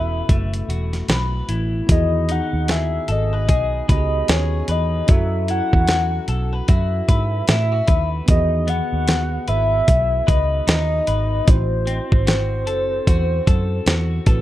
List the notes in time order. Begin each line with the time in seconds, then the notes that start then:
Already playing: E1 B2 B3 C#4 E4 F#4 A4 B4 E5
0.29 F#1 A3, kick, closed hi-hat
0.54 closed hi-hat
0.68 E1 F#4, closed hi-hat
0.93 snare, closed hi-hat
1.08 B1 B4, snare, closed hi-hat
1.49 A1 E4, closed hi-hat
1.87 E2 D#3 B3 F#4, kick, closed hi-hat
1.91 G#4 D#5
2.29 D#4 F#5, closed hi-hat
2.53 D#2
2.68 G#4 E5, snare, closed hi-hat
3.08 G#1 A4 D#5, closed hi-hat
3.33 B4
3.48 B1 G#4, kick, closed hi-hat
3.88 C#2 B3 D#4 F#4 G4 B4 D#5, kick, closed hi-hat
3.97 G#4
4.28 D#2 G#4 C#5, snare, closed hi-hat
4.68 E2 B4 D#5, closed hi-hat
5.06 F#2 F#3 C#4 E4 F#4, kick, closed hi-hat
5.11 A4 E5
5.48 E4 F#5, closed hi-hat
5.73 E2, kick
5.88 F#4, snare, closed hi-hat
6.28 B1 A4, closed hi-hat
6.52 B4
6.68 F#2 F#4 E5, kick, closed hi-hat
7.08 G#2 B4, kick, closed hi-hat
7.48 A2 E4 E5, snare, closed hi-hat
7.72 F#4
7.88 D#2 B4, kick, closed hi-hat
8.26 E2 D#3 B3 F#4 D#5, kick, closed hi-hat
8.31 G#4
8.67 B3 F#5, closed hi-hat
8.93 D#2
9.08 snare, closed hi-hat
9.48 G#1 B4 E5, closed hi-hat
9.88 B1, kick, closed hi-hat
10.27 C#2 B4 D#5, kick, closed hi-hat
10.67 D#2 D#4 D#5, snare, closed hi-hat
11.07 G#1 B4, closed hi-hat
11.45 A1 C4 E4 F#4, kick, closed hi-hat
11.49 C5
11.87 C4, closed hi-hat
12.12 G#1, kick
12.27 F#4 C5, snare, closed hi-hat
12.67 F#1 A4, closed hi-hat
13.07 E2 F#4, kick, closed hi-hat
13.47 F#2 A4, kick, closed hi-hat
13.86 E2 F#4, snare, closed hi-hat
14.26 A1 C4 E4 F#4 A4 B4, kick, closed hi-hat